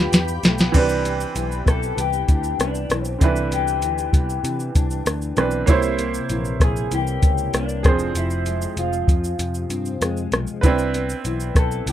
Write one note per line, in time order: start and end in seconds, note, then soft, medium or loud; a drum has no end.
0.00 0.74 G2 medium
0.00 0.12 F3 medium
0.00 0.43 B3 medium
0.00 0.70 B3 medium
0.00 0.71 D4 medium
0.00 0.69 F4 medium
0.00 0.80 F4 medium
0.00 0.70 G4 medium
0.00 0.72 G4 medium
0.00 0.70 G5 medium
0.00 0.70 B5 medium
0.12 0.37 E2 medium
0.12 snare medium
0.12 closed hi-hat medium
0.12 shaker medium
0.28 shaker soft
0.43 0.68 B1 medium
0.43 0.59 A3 medium
0.43 snare loud
0.43 closed hi-hat soft
0.43 shaker soft
0.58 0.81 B3 soft
0.58 snare medium
0.58 shaker medium
0.72 1.24 C2 medium
0.72 3.16 E3 medium
0.72 3.17 C4 medium
0.72 3.18 D4 medium
0.72 kick medium
0.72 closed hi-hat medium
0.72 crash medium
0.72 shaker medium
0.77 3.19 B4 medium
0.89 shaker medium
1.05 1.67 B3 medium
1.05 closed hi-hat soft
1.05 shaker soft
1.21 shaker medium
1.36 1.60 B1 medium
1.36 1.97 E3 medium
1.36 closed hi-hat medium
1.36 shaker medium
1.52 shaker medium
1.66 1.91 B1 medium
1.66 2.59 B3 medium
1.66 1.99 A4 loud
1.66 kick medium
1.66 cross-stick medium
1.66 closed hi-hat soft
1.66 shaker soft
1.83 shaker soft
1.97 2.22 C2 medium
1.97 2.91 E3 medium
1.97 2.62 G4 loud
1.97 closed hi-hat medium
1.97 shaker medium
2.13 shaker medium
2.28 2.53 D2 medium
2.28 4.74 D4 medium
2.28 kick medium
2.28 closed hi-hat soft
2.28 shaker soft
2.44 shaker soft
2.59 2.84 C2 medium
2.59 3.51 B3 medium
2.59 3.05 D4 medium
2.59 cross-stick medium
2.59 closed hi-hat medium
2.59 shaker medium
2.75 shaker soft
2.90 3.15 B1 medium
2.90 3.83 E3 medium
2.90 cross-stick loud
2.90 closed hi-hat soft
2.90 shaker soft
3.05 3.18 C4 medium
3.05 shaker medium
3.19 3.83 C2 loud
3.19 3.26 D3 soft
3.19 5.33 C4 medium
3.19 5.34 D4 medium
3.19 3.53 E4 medium
3.19 kick medium
3.19 closed hi-hat medium
3.19 shaker medium
3.24 5.36 E3 medium
3.24 5.35 B4 medium
3.36 shaker soft
3.52 4.13 B3 medium
3.52 5.34 G4 medium
3.52 closed hi-hat soft
3.52 shaker soft
3.68 shaker medium
3.82 4.08 D2 medium
3.82 4.44 E3 medium
3.82 closed hi-hat medium
3.82 shaker medium
3.98 shaker medium
4.13 4.38 C2 medium
4.13 5.06 B3 medium
4.13 kick medium
4.13 closed hi-hat soft
4.13 shaker soft
4.30 shaker soft
4.44 4.69 C3 medium
4.44 5.37 E3 medium
4.44 closed hi-hat medium
4.44 shaker medium
4.60 shaker medium
4.75 5.00 C2 medium
4.75 5.75 D4 medium
4.75 kick medium
4.75 closed hi-hat medium
4.75 shaker medium
4.91 shaker soft
5.06 5.31 D2 medium
5.06 5.75 B3 medium
5.06 cross-stick medium
5.06 closed hi-hat medium
5.06 shaker medium
5.22 shaker soft
5.37 5.62 B1 medium
5.37 5.68 E3 medium
5.37 6.02 E3 medium
5.37 5.69 C4 medium
5.37 5.69 D4 medium
5.37 5.70 B4 medium
5.37 cross-stick loud
5.37 closed hi-hat soft
5.37 shaker soft
5.51 shaker soft
5.66 6.18 C2 loud
5.66 7.91 C3 medium
5.66 7.80 A#3 medium
5.66 7.82 E4 medium
5.66 7.81 C#5 medium
5.66 kick loud
5.66 closed hi-hat medium
5.66 shaker medium
5.71 7.82 C5 medium
5.83 shaker soft
5.99 6.59 A#3 medium
5.99 closed hi-hat soft
5.99 shaker soft
6.14 shaker medium
6.29 6.55 A#1 medium
6.29 6.91 E3 medium
6.29 closed hi-hat medium
6.29 shaker medium
6.45 shaker soft
6.60 6.85 A#1 medium
6.60 7.53 A#3 medium
6.60 6.91 G#4 medium
6.60 kick medium
6.60 cross-stick medium
6.60 closed hi-hat soft
6.60 shaker soft
6.76 shaker soft
6.91 7.16 C2 medium
6.91 7.91 E3 medium
6.91 7.57 G4 loud
6.91 closed hi-hat medium
6.91 shaker medium
7.07 shaker medium
7.22 7.47 C#2 medium
7.22 kick medium
7.22 closed hi-hat medium
7.22 shaker medium
7.38 shaker soft
7.54 7.86 C2 medium
7.54 7.91 A#3 medium
7.54 8.13 D4 medium
7.54 cross-stick medium
7.54 closed hi-hat medium
7.54 shaker medium
7.69 shaker soft
7.83 8.09 F1 medium
7.83 8.15 F2 medium
7.83 10.29 F3 medium
7.83 10.28 C4 medium
7.83 10.27 G#4 medium
7.83 kick loud
7.83 cross-stick loud
7.83 closed hi-hat soft
7.83 shaker soft
7.88 10.30 C5 medium
7.99 shaker soft
8.15 8.65 F1 medium
8.15 10.63 F2 medium
8.15 8.74 E4 medium
8.15 closed hi-hat medium
8.15 shaker medium
8.30 shaker soft
8.46 9.09 G#3 medium
8.46 closed hi-hat soft
8.46 shaker soft
8.62 shaker medium
8.77 9.02 F1 medium
8.77 10.31 F3 medium
8.77 10.29 F4 medium
8.77 closed hi-hat medium
8.77 shaker medium
8.93 shaker soft
9.07 9.33 F2 medium
9.07 kick medium
9.07 closed hi-hat soft
9.07 shaker soft
9.24 shaker soft
9.39 9.64 F2 medium
9.39 10.64 C3 medium
9.39 closed hi-hat medium
9.39 shaker medium
9.54 shaker medium
9.70 9.95 G2 medium
9.70 10.98 C4 medium
9.70 closed hi-hat medium
9.70 shaker soft
9.86 shaker soft
10.01 10.26 F2 medium
10.01 10.70 G#3 medium
10.01 cross-stick medium
10.01 closed hi-hat medium
10.01 shaker medium
10.17 shaker soft
10.32 10.45 B1 medium
10.32 10.69 F3 medium
10.32 cross-stick loud
10.32 closed hi-hat soft
10.32 shaker soft
10.47 shaker soft
10.61 11.13 C2 loud
10.61 11.92 D4 medium
10.61 11.92 E4 medium
10.61 11.92 B4 medium
10.61 kick loud
10.61 closed hi-hat medium
10.61 shaker medium
10.66 11.92 C4 medium
10.78 shaker soft
10.94 11.56 B3 medium
10.94 closed hi-hat soft
10.94 shaker soft
11.10 shaker medium
11.25 11.50 B1 medium
11.25 11.88 E3 medium
11.25 closed hi-hat medium
11.25 shaker medium
11.40 shaker medium
11.55 11.80 B1 medium
11.55 11.92 B3 medium
11.55 kick medium
11.55 cross-stick medium
11.55 closed hi-hat soft
11.55 shaker soft
11.59 11.86 A4 loud
11.71 shaker medium
11.86 11.92 C2 medium
11.86 11.92 E3 medium
11.86 closed hi-hat medium
11.86 shaker medium